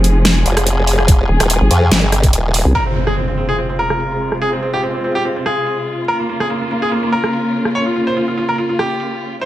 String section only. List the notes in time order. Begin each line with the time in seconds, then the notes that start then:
Already playing: C3 F3 G#4
2.75 C3 G#3 F4
6.08 C#3 A#3
9.42 C3 G3 E4